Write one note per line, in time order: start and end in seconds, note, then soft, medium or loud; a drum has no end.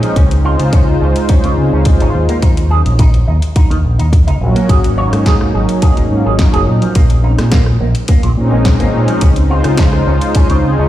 0.00 0.13 F3 medium
0.00 0.14 G#3 medium
0.00 0.14 C4 medium
0.00 0.15 C#4 medium
0.00 0.15 D#4 medium
0.00 closed hi-hat soft
0.16 0.55 C#2 medium
0.16 0.24 C#4 medium
0.16 kick loud
0.16 closed hi-hat medium
0.31 closed hi-hat soft
0.43 1.54 G#3 medium
0.43 1.55 D#4 medium
0.43 0.52 F4 medium
0.43 1.55 F4 medium
0.43 1.54 C5 medium
0.59 0.97 C#3 medium
0.59 closed hi-hat soft
0.73 0.81 C#4 loud
0.73 kick loud
0.73 closed hi-hat medium
1.01 1.13 C#2 medium
1.01 1.06 C#4 medium
1.16 closed hi-hat soft
1.29 1.41 C#4 medium
1.29 muted fingered electric bass stroke soft
1.29 kick loud
1.29 closed hi-hat medium
1.44 1.55 C#2 medium
1.44 1.49 C#3 medium
1.44 closed hi-hat soft
1.57 1.70 C#3 medium
1.57 1.69 G#3 medium
1.57 1.69 C4 medium
1.57 1.69 D#4 medium
1.57 1.70 G#4 medium
1.72 1.95 C#2 medium
1.72 2.13 G#3 medium
1.72 1.79 C#4 medium
1.72 2.13 D#4 medium
1.72 2.13 F4 loud
1.72 2.13 C5 medium
1.85 kick loud
1.85 closed hi-hat medium
2.00 2.12 G#1 medium
2.00 2.08 C#4 medium
2.00 closed hi-hat soft
2.14 2.26 D#2 medium
2.29 2.39 A#3 medium
2.29 closed hi-hat soft
2.42 2.81 D#2 medium
2.42 2.50 D#4 medium
2.42 kick loud
2.42 closed hi-hat medium
2.57 closed hi-hat soft
2.70 2.78 F#3 medium
2.70 2.78 A#3 medium
2.70 2.78 C#4 medium
2.70 2.79 D#4 medium
2.70 2.78 G#4 medium
2.86 3.23 A#1 medium
2.86 closed hi-hat soft
2.99 3.07 D#4 loud
2.99 kick loud
2.99 closed hi-hat medium
3.14 closed hi-hat soft
3.27 3.40 D#2 medium
3.27 3.32 D#4 medium
3.42 closed hi-hat soft
3.56 3.67 D#4 medium
3.56 kick loud
3.56 closed hi-hat medium
3.70 3.81 D#2 medium
3.70 3.75 D#3 medium
3.70 closed hi-hat soft
3.84 3.96 A#1 medium
3.99 4.22 D#2 medium
3.99 4.06 D#4 medium
3.99 closed hi-hat soft
4.13 kick loud
4.13 closed hi-hat medium
4.27 4.38 C#2 medium
4.27 4.34 D#4 medium
4.27 closed hi-hat soft
4.40 4.53 A#1 medium
4.40 4.94 F#3 medium
4.40 4.94 A#3 medium
4.40 4.94 C#4 medium
4.40 4.95 F#4 medium
4.55 4.66 A#3 medium
4.55 closed hi-hat soft
4.69 5.08 G#1 medium
4.69 4.77 G#4 medium
4.69 kick loud
4.69 closed hi-hat medium
4.84 closed hi-hat soft
4.97 6.07 F#3 medium
4.97 6.07 A#3 medium
4.97 6.08 C#4 medium
4.97 6.08 D#4 loud
4.97 5.05 C#5 medium
5.12 5.50 G#2 medium
5.12 cross-stick medium
5.12 closed hi-hat soft
5.26 5.33 G#4 loud
5.26 kick loud
5.26 snare loud
5.26 closed hi-hat medium
5.41 cross-stick medium
5.54 5.66 G#1 medium
5.54 5.59 G#4 medium
5.69 closed hi-hat soft
5.82 5.94 G#4 medium
5.82 muted fingered electric bass stroke soft
5.82 kick loud
5.82 closed hi-hat medium
5.97 6.08 G#1 medium
5.97 6.02 G#3 medium
5.97 closed hi-hat soft
6.10 6.23 G#2 medium
6.10 6.22 F#3 medium
6.10 6.22 A#3 medium
6.10 6.22 C#4 medium
6.10 6.23 F4 medium
6.25 6.48 G#1 medium
6.25 6.65 F#3 medium
6.25 6.66 A#3 medium
6.25 6.66 C#4 medium
6.25 6.66 D#4 medium
6.25 6.32 G#4 medium
6.39 kick loud
6.39 snare loud
6.39 closed hi-hat medium
6.53 6.65 F#1 medium
6.53 6.60 G#4 medium
6.53 closed hi-hat soft
6.67 6.79 A#2 medium
6.82 6.92 F3 loud
6.82 closed hi-hat soft
6.95 7.34 A#1 medium
6.95 7.03 A#3 medium
6.95 kick loud
6.95 closed hi-hat medium
7.10 closed hi-hat soft
7.23 7.31 G#3 medium
7.23 7.31 C4 medium
7.23 7.31 C#4 medium
7.23 7.31 D#4 medium
7.38 7.76 A#2 medium
7.38 cross-stick medium
7.38 snare soft
7.38 closed hi-hat soft
7.51 7.60 A#3 loud
7.51 kick loud
7.51 snare loud
7.51 closed hi-hat medium
7.66 cross-stick medium
7.80 7.93 A#1 medium
7.80 7.85 A#3 medium
7.95 closed hi-hat soft
8.08 8.20 A#3 medium
8.08 kick loud
8.08 closed hi-hat medium
8.23 8.34 A#1 medium
8.23 8.28 A#2 medium
8.23 closed hi-hat soft
8.36 8.49 A#2 medium
8.36 8.76 G#3 medium
8.36 8.76 C4 medium
8.36 8.77 C#4 medium
8.36 8.77 D#4 loud
8.52 8.75 A#1 medium
8.52 8.59 A#3 medium
8.65 kick loud
8.65 snare loud
8.65 closed hi-hat medium
8.79 8.91 G#1 loud
8.79 9.20 G#3 medium
8.79 8.87 A#3 loud
8.79 9.20 C4 medium
8.79 9.20 C#4 medium
8.79 9.20 D#4 medium
8.79 closed hi-hat soft
8.93 9.06 A#2 medium
9.08 9.19 F3 loud
9.08 closed hi-hat soft
9.21 9.60 C#2 medium
9.21 9.29 C#4 medium
9.21 kick loud
9.21 closed hi-hat medium
9.36 closed hi-hat medium
9.48 10.60 G#3 medium
9.48 10.60 D#4 medium
9.48 9.58 F4 medium
9.48 10.61 F4 medium
9.48 10.60 C5 medium
9.64 10.03 C#3 medium
9.64 cross-stick medium
9.64 closed hi-hat soft
9.77 9.86 C#4 loud
9.77 kick loud
9.77 snare loud
9.77 closed hi-hat medium
9.93 cross-stick medium
10.07 10.19 C#2 medium
10.07 10.12 C#4 medium
10.21 closed hi-hat soft
10.35 10.47 C#4 medium
10.35 muted fingered electric bass stroke soft
10.35 kick loud
10.35 closed hi-hat medium
10.50 10.61 C#2 medium
10.50 10.54 C#3 medium
10.50 closed hi-hat soft
10.62 10.75 C#3 medium
10.62 10.75 G#3 medium
10.62 10.75 C4 medium
10.62 10.75 D#4 medium
10.62 10.75 G#4 medium
10.77 10.88 C#2 medium
10.77 10.88 G#3 medium
10.77 10.85 C#4 medium
10.77 10.88 D#4 medium
10.77 10.88 F4 loud
10.77 10.88 C5 medium